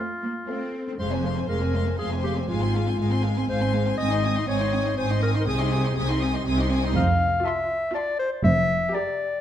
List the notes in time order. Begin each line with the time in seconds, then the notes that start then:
Already playing: A3 C4 F4 F5
0.23 A#3
0.48 A3 C4 A4 F5
0.87 C4
0.98 F1 F2 G#3 C5 F5 C6
1.11 C4 C5 G#5
1.23 G#3 F5 C6
1.36 C4 C5 G#5
1.48 F1 F2 G#3 A#4 F5 C6
1.61 C4 C5 G#5
1.74 G#3 F5 C6
1.86 C4 C5 G#5
1.98 F1 F2 G#3 G#4 F5 C6
2.10 C4 C5 G#5
2.23 G#3 G4 F5 C6
2.35 C4 C5 G#5
2.48 G#1 G#2 G#3 F4 F5 G#5
2.60 C4 G#5 C6
2.73 G#3 F5 G#5
2.86 C4 G#5 C6
2.98 G#1 G#2 G#3 F5 G#5
3.10 C4 G#5 C6
3.23 G#3 F5 G#5
3.36 C4 G#5 C6
3.48 G#1 G#2 G#3 C5 F5 G#5
3.61 C4 G#5 C6
3.73 G#3 F5 G#5
3.86 C4 G#5 C6
3.98 G#1 G#2 C4 D#5 G#5 D#6
4.10 D#4 D#5 C6
4.24 C4 G#5 D#6
4.35 D#4 D#5 C6
4.48 G#1 G#2 C4 C#5 G#5 D#6
4.60 D#4 D#5 C6
4.72 C4 G#5 D#6
4.85 D#4 D#5 C6
4.97 G#1 G#2 C4 C5 G#5 D#6
5.10 D#4 D#5 C6
5.22 C4 A#4 G#5 D#6
5.34 D#4 D#5 C6
5.40 A#4
5.47 C2 C3 C4 G#4 G#5 D#6
5.59 D#4 D#5 C6
5.71 C4 G#5 D#6
5.84 D#4 D#5 C6
5.96 C2 C3 C4 G#5 D#6
6.09 D#4 D#5 C6
6.21 C4 G#5 D#6
6.33 D#4 D#5 C6
6.46 C2 C3 C4 G#5 D#6
6.58 D#4 D#5 C6
6.70 C4 G#5 D#6
6.83 D#4 D#5 C6
6.96 F1 F2 F5
7.45 F4 E5 A5 C6
7.94 F4 D5 A5 C6
8.19 C5
8.44 F1 F2 E5
8.94 G4 D5 G5 A#5